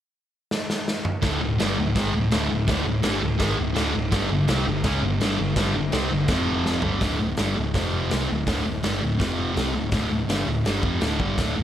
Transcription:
0.51 snare
0.70 snare
0.88 snare
1.05 mid tom
1.22 picked electric bass D1, distorted electric guitar D2 A2 D3, kick, snare, crash
1.41 picked electric bass D1, distorted electric guitar D2 A2
1.59 picked electric bass G1, distorted electric guitar G2 D3 G3, snare, crash
1.77 picked electric bass D1, distorted electric guitar D2 A2
1.95 picked electric bass G#1, distorted electric guitar G#2 D#3 G#3, kick, snare, crash
2.14 picked electric bass D1, distorted electric guitar D2 A2
2.31 picked electric bass D1, distorted electric guitar D2 A2 D3, snare, crash
2.50 picked electric bass D1, distorted electric guitar D2 A2
2.67 picked electric bass D1, distorted electric guitar D2 A2 D3, kick, snare, crash
2.85 picked electric bass D1, distorted electric guitar D2 A2
3.03 picked electric bass G1, distorted electric guitar G2 D3 G3, snare, crash
3.20 picked electric bass D1, distorted electric guitar D2 A2
3.38 picked electric bass G#1, distorted electric guitar G#2 D#3 G#3, kick, snare, crash
3.57 picked electric bass D1, distorted electric guitar D2 A2
3.74 picked electric bass D1, distorted electric guitar D2 A2 D3, snare, crash
3.94 picked electric bass D1, distorted electric guitar D2 A2
4.11 picked electric bass G1, distorted electric guitar G2 D3 G3, kick, snare, crash
4.30 picked electric bass G1, distorted electric guitar G2 D3
4.48 picked electric bass C2, distorted electric guitar C3 G3 C4, snare, crash
4.66 picked electric bass G1, distorted electric guitar G2 D3
4.84 picked electric bass C#2, distorted electric guitar C#3 G#3 C#4, kick, snare, crash
5.02 picked electric bass G1, distorted electric guitar G2 D3
5.21 picked electric bass G1, distorted electric guitar G2 D3 G3, snare, crash
5.39 picked electric bass G1, distorted electric guitar G2 D3
5.56 picked electric bass G1, distorted electric guitar G2 D3 G3, kick, snare, crash
5.74 picked electric bass G1, distorted electric guitar G2 D3
5.92 picked electric bass C2, distorted electric guitar C3 G3 C4, snare, crash
6.10 picked electric bass G1, distorted electric guitar G2 D3
6.28 picked electric bass F1, distorted electric guitar F2 C3 F3, kick, snare, crash
6.66 snare
6.82 picked electric bass G1, distorted electric guitar G2 D3 G3, floor tom
7.01 picked electric bass D1, distorted electric guitar D2 A2 D3, kick, snare, open hi-hat
7.19 picked electric bass D1, distorted electric guitar D2 A2
7.37 picked electric bass G1, distorted electric guitar G2 D3 G3, snare, open hi-hat
7.56 picked electric bass D1, distorted electric guitar D2 A2
7.74 picked electric bass F1, distorted electric guitar F2 C3 F3, kick, snare, open hi-hat
8.11 picked electric bass C2, distorted electric guitar C3 G3 C4, snare, open hi-hat
8.29 picked electric bass D1, distorted electric guitar D2 A2
8.47 picked electric bass D1, distorted electric guitar D2 A2 D3, kick, snare, open hi-hat
8.65 picked electric bass D1, distorted electric guitar D2 A2
8.83 picked electric bass G1, distorted electric guitar G2 D3 G3, snare, open hi-hat
9.01 picked electric bass D1, distorted electric guitar D2 A2
9.19 picked electric bass F1, distorted electric guitar F2 C3 F3, kick, snare, open hi-hat
9.54 picked electric bass C2, distorted electric guitar C3 G3 C4, snare, open hi-hat
9.74 picked electric bass D1, distorted electric guitar D2 A2
9.91 picked electric bass D1, distorted electric guitar D2 A2 D3, kick, snare, open hi-hat
10.10 picked electric bass D1, distorted electric guitar D2 A2
10.27 picked electric bass G1, distorted electric guitar G2 D3 G3, snare, open hi-hat
10.46 picked electric bass D1, distorted electric guitar D2 A2
10.65 picked electric bass G1, distorted electric guitar G2 D3 G3, snare, open hi-hat
10.83 picked electric bass F1, distorted electric guitar F2 C3 F3, kick
11.01 picked electric bass D1, distorted electric guitar D2 A2 D3, snare, open hi-hat
11.20 picked electric bass G1, distorted electric guitar G2 D3 G3, kick
11.38 picked electric bass D1, distorted electric guitar D2 A2 D3, kick, snare, open hi-hat
11.56 picked electric bass D1, distorted electric guitar D2 A2

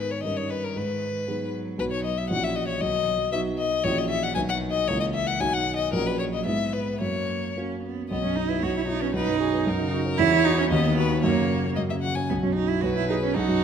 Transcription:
Already playing: grand piano G#2 B3 D#4 B4, cello D#3, violin B4
0.10 violin C#5
0.23 grand piano G2 C#4 D#4 A#4, cello D#3, violin D#5
0.36 violin C#5
0.50 violin B4
0.64 violin A#4
0.76 grand piano G#2, violin B4
1.26 cello F#3, grand piano B3 D#4 G#4
1.78 grand piano B1 B3 D#4 F#4, violin B4
1.91 violin C#5
2.04 violin D#5
2.17 violin E5
2.30 grand piano A#1 C#4 E4 F#4, cello E3, violin F#5
2.43 violin E5
2.56 violin D#5
2.68 violin C#5
2.80 grand piano B1, cello D#3, violin D#5
3.07 cello F#3
3.32 cello F#3, grand piano B3 D#4 F#4, violin E5
3.58 violin D#5
3.83 grand piano A#1 C#4 E4 F#4, cello E3, violin C#5
3.98 violin D#5
4.10 violin E5
4.23 violin F#5
4.35 grand piano B1 B3 D#4 F#4, cello D#3, violin G#5
4.49 violin F#5
4.70 violin D#5
4.87 grand piano C#2 A#3 C#4 E4, cello E3, violin C#5
5.00 violin D#5
5.14 violin E5
5.27 violin F#5
5.39 grand piano B1 F#3 D#4 F#4, cello D#3, violin G#5
5.53 violin F#5
5.76 violin D#5
5.92 grand piano A#1 F#3 C#4 F#4, cello F#3, violin A#4
6.06 violin B4
6.19 violin C#5
6.33 violin D#5
6.45 grand piano G#2 G#3 B3 E4, cello B3, violin E5
6.73 violin B4
6.99 grand piano F#2, cello A#3, violin C#5
7.56 grand piano A#3 C#4 F#4, cello C#4
7.84 cello B3
8.10 grand piano B1, cello B3, violin D#5
8.23 grand piano F#2, cello C#4
8.36 cello D#4, grand piano D#4
8.49 grand piano B3, cello E4
8.62 grand piano B1, cello F#4, violin C#5
8.75 grand piano B2, cello E4
8.88 cello D#4, grand piano E4
9.01 grand piano B3, cello C#4
9.13 grand piano B1, cello D#4, violin B4
9.27 grand piano F#2
9.40 grand piano F#4, violin G#4
9.54 grand piano B3
9.66 grand piano F#2, violin A#4
9.80 grand piano C#3
9.93 grand piano F#4
10.06 grand piano C#4
10.18 grand piano E2, cello E4, violin C#5
10.32 grand piano E3
10.45 cello D#4, grand piano F#4
10.58 grand piano C#4, cello C#4
10.70 grand piano D#2, cello B3, violin D#5
10.85 grand piano D#3
10.97 grand piano F#4, violin B4
11.10 grand piano D#4
11.22 grand piano F#2, cello A#3, violin C#5
11.37 grand piano C#3
11.51 grand piano F#4
11.65 grand piano C#4
11.76 grand piano F#2, violin D#5
11.90 grand piano C#3, violin E5
12.01 grand piano F#4, violin F#5
12.15 grand piano C#4, violin G#5
12.30 grand piano B1, cello B3
12.43 grand piano F#2, cello C#4
12.55 cello D#4, grand piano F#4
12.69 grand piano D#4, cello E4
12.81 grand piano B1, cello F#4, violin B4
12.96 grand piano B2, cello E4
13.09 cello D#4, grand piano G#4
13.23 grand piano B3, cello C#4
13.35 grand piano B1, cello D#4, violin F#4
13.48 grand piano F#2

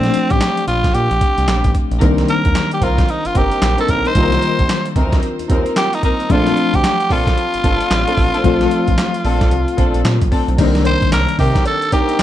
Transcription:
Already playing: fm electric piano F3 A3 C4 D4, tenor saxophone C4
0.03 snare, closed hi-hat
0.14 closed hi-hat
0.30 analog synth bass A1, tenor saxophone G4, kick, closed hi-hat
0.41 snare, clap, closed hi-hat
0.57 closed hi-hat
0.68 analog synth bass A#1, tenor saxophone F4, closed hi-hat
0.84 kick, snare, closed hi-hat
0.94 analog synth bass A#2, tenor saxophone G4, closed hi-hat
1.11 analog synth bass A#1, closed hi-hat
1.21 kick, closed hi-hat
1.38 analog synth bass C2, closed hi-hat
1.48 analog synth bass A#1, snare, clap, closed hi-hat
1.64 analog synth bass A1, kick, closed hi-hat
1.75 kick, closed hi-hat
1.91 analog synth bass A#1, closed hi-hat
2.01 analog synth bass C2, fm electric piano D#3 G3 A#3 D4, string section C4 D#4 A#4, kick, closed hi-hat
2.18 snare, closed hi-hat
2.28 tenor saxophone A#4, closed hi-hat
2.45 analog synth bass D#2, kick, closed hi-hat
2.55 snare, clap, closed hi-hat
2.71 tenor saxophone G4, closed hi-hat
2.81 analog synth bass C2, string section C4 D#4 A#4, tenor saxophone F4, kick, closed hi-hat
2.98 kick, snare, closed hi-hat
3.09 tenor saxophone D#4, closed hi-hat
3.25 analog synth bass G1, tenor saxophone F4, closed hi-hat
3.35 analog synth bass G1, string section C4 D#4 A#4, tenor saxophone G4, kick, closed hi-hat
3.52 closed hi-hat
3.62 analog synth bass A#1, snare, clap, closed hi-hat
3.78 string section C4 D#4 A#4, tenor saxophone A4, closed hi-hat
3.88 analog synth bass B1, tenor saxophone A#4, kick, closed hi-hat
4.05 string section C4 D#4 A#4, tenor saxophone C5, closed hi-hat
4.15 analog synth bass C2, fm electric piano D#3 G3 A#3 F4, string section C4 D#4 A#4, kick, closed hi-hat
4.32 snare, closed hi-hat
4.42 closed hi-hat
4.59 analog synth bass A#1, kick, closed hi-hat
4.69 snare, clap, closed hi-hat
4.86 closed hi-hat
4.96 analog synth bass D2, string section C4 D#4 A#4, kick, closed hi-hat
5.12 kick, snare, closed hi-hat
5.23 closed hi-hat
5.39 analog synth bass D#2, closed hi-hat
5.49 analog synth bass D#2, string section C4 D#4 A#4, kick, closed hi-hat
5.66 closed hi-hat
5.76 tenor saxophone G4, snare, clap, closed hi-hat
5.93 tenor saxophone D#4, closed hi-hat
6.03 string section C4 D#4 A#4, tenor saxophone D#4, kick, closed hi-hat
6.20 closed hi-hat
6.29 analog synth bass A#1, fm electric piano F3 A3 C4 D4, string section C4 D4 A4, tenor saxophone F4, kick, closed hi-hat
6.47 snare, closed hi-hat
6.57 closed hi-hat
6.74 analog synth bass D2, tenor saxophone G4, kick, closed hi-hat
6.84 snare, clap, closed hi-hat
7.00 closed hi-hat
7.10 analog synth bass A#1, string section C4 D4 A4, tenor saxophone F4, kick, open hi-hat
7.27 kick, snare, closed hi-hat
7.38 closed hi-hat
7.54 analog synth bass G1, closed hi-hat
7.64 analog synth bass G1, string section C4 D4 A4, kick, closed hi-hat
7.81 closed hi-hat
7.91 analog synth bass A1, snare, clap, closed hi-hat
8.07 string section C4 D4 A4, closed hi-hat
8.17 analog synth bass A1, kick, open hi-hat
8.34 string section C4 D4 A4, closed hi-hat
8.44 analog synth bass A#1, fm electric piano F3 A3 C4 F4, string section C4 D4 A4, kick, closed hi-hat
8.61 snare, closed hi-hat
8.71 closed hi-hat
8.88 analog synth bass A1, kick, closed hi-hat
8.98 snare, clap, closed hi-hat
9.14 closed hi-hat
9.24 analog synth bass A#1, string section C4 D4 A4, open hi-hat
9.41 kick, snare, closed hi-hat
9.51 analog synth bass C2, closed hi-hat
9.68 closed hi-hat
9.78 analog synth bass A#1, string section C4 D4 A4, kick, closed hi-hat
9.94 analog synth bass A#1, closed hi-hat
10.05 analog synth bass A#2, snare, clap, closed hi-hat
10.21 analog synth bass A#1, kick, closed hi-hat
10.31 string section C4 D4 A4, kick, open hi-hat
10.48 analog synth bass B1, closed hi-hat
10.58 analog synth bass C2, fm electric piano D#3 G3 A#3 D4, string section C4 D#4 A#4, kick, closed hi-hat, crash, cowbell
10.75 snare, closed hi-hat
10.85 tenor saxophone C5, closed hi-hat, cowbell
11.02 kick, closed hi-hat
11.12 analog synth bass C2, tenor saxophone A#4, snare, clap, closed hi-hat, cowbell
11.28 closed hi-hat
11.38 analog synth bass C3, string section C4 D#4 A#4, tenor saxophone G4, kick, open hi-hat
11.55 kick, snare, closed hi-hat
11.65 tenor saxophone A4, closed hi-hat, cowbell
11.82 closed hi-hat
11.92 string section C4 D#4 A#4, tenor saxophone G4, kick, closed hi-hat, cowbell
12.09 closed hi-hat
12.19 analog synth bass C2, snare, closed hi-hat, cowbell

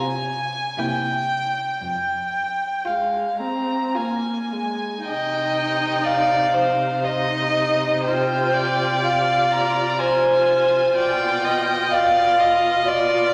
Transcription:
Already playing: cello C3, viola C4, violin F4 G#5
0.78 cello C3, viola A#3, violin E4 G5
1.81 cello F2, violin G5
2.85 viola G#3, violin F4 F5
3.40 viola C4, violin A#5
3.95 viola A#3, violin F4 G#5
4.52 viola G#3
5.06 cello C3, viola D#4, violin D#5 G5
6.04 violin D5 F5
6.54 violin C5
7.04 viola D#4, violin D#5
8.03 viola F4, violin C5 G5
8.54 violin D5
9.04 viola F4, violin F5
9.52 violin A#5
9.99 viola F4, violin C5 G#5
10.95 cello B2, viola F4, violin D5 G5
11.45 violin D#5
11.91 viola F4, violin D5 F5
12.40 violin D#5
12.85 viola F4, violin D5

